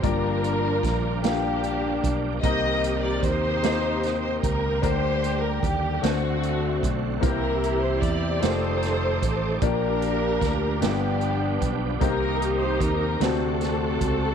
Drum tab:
HH |xxxxxx|xxxxxx|xxxxxx|xxxxxx|
SD |--oo--|---oo-|---o--|---oo-|
BD |o-o--o|o-o--o|o-o--o|o-o--o|

HH |xxxxxx|xxxxxx|
SD |--oo--|---oo-|
BD |o-o--o|o-o--o|